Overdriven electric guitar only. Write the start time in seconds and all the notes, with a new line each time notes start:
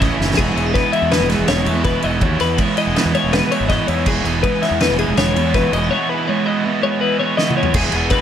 0.00 A2 E3 A3 C#4 E4
0.18 A3 C#4 E4
0.37 E3 G#3 B3 E4
0.56 G#3 B3 E4
0.74 E3 G#3 B3 E4
0.93 E3 G#3 B3 E4
1.12 E3 G#3 B3 E4
1.30 G#3 B3 E4
1.48 E3 G#3 B3 E4
1.68 G#3 B3 E4
1.86 E3 G#3 B3 E4
2.04 G#3 B3 E4
2.22 E3 G#3 B3 E4
2.40 G#3 B3 E4
2.58 E3 G#3 B3 E4
2.77 E3 G#3 B3 E4
2.95 E3 G#3 B3 E4
3.13 G#3 B3 E4
3.31 E3 G#3 B3 E4
3.52 G#3 B3 E4
3.69 E3 G#3 B3 E4
3.89 G#3 B3 E4
4.07 E3 G#3 B3 E4
4.25 G#3 B3 E4
4.44 E3 G#3 B3 E4
4.62 E3 G#3 B3 E4
4.79 E3 G#3 B3 E4
4.99 G#3 B3 E4
5.17 E3 G#3 B3 E4
5.36 G#3 B3 E4
5.54 E3 G#3 B3 E4
5.72 G#3 B3 E4
5.91 E3 G#3 B3 E4
6.09 G#3 B3 E4
6.28 E3 G#3 B3 E4
6.45 E3 G#3 B3 E4
6.64 E3 G#3 B3 E4
6.81 G#3 B3 E4
7.00 E3 G#3 B3 E4
7.19 G#3 B3 E4
7.38 E3 G#3 B3 E4
7.56 G#3 B3 E4
7.74 E3 G#3 B3 E4
7.93 G#3 B3 E4
8.11 E3 G#3 B3 E4